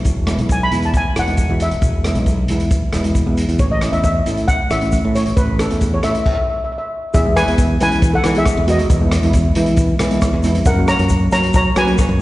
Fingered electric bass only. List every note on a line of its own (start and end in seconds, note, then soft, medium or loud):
0.06 0.34 E1 medium
0.39 0.67 B1 medium
0.72 0.91 E2 medium
1.17 1.45 E1 medium
1.50 1.68 E2 medium
1.72 1.81 E1 medium
1.82 2.11 E1 medium
2.16 2.44 B1 medium
2.50 2.68 E2 medium
2.94 3.22 E1 medium
3.27 3.45 E2 medium
3.49 3.58 E2 medium
3.59 3.88 A1 medium
3.93 4.21 E2 medium
4.26 4.45 A2 medium
4.71 4.99 A1 medium
5.05 5.23 A2 loud
5.27 5.36 A1 medium
5.37 5.65 A1 loud
5.71 5.99 E2 medium
6.04 6.13 A2 medium
7.15 7.42 E2 medium
7.48 7.75 E2 medium
7.82 8.18 E3 medium
8.25 8.43 E3 medium
8.57 8.79 E2 loud
8.79 8.88 D#2 medium
8.90 9.18 E2 medium
9.23 9.51 E2 medium
9.56 9.94 E3 medium
10.01 10.19 E3 loud
10.33 10.56 E2 loud
10.56 10.65 F2 loud
10.66 10.94 F#2 loud
10.99 11.27 F#2 medium
11.32 11.70 F#3 medium
11.76 11.95 F#3 medium
12.09 12.22 F#2 loud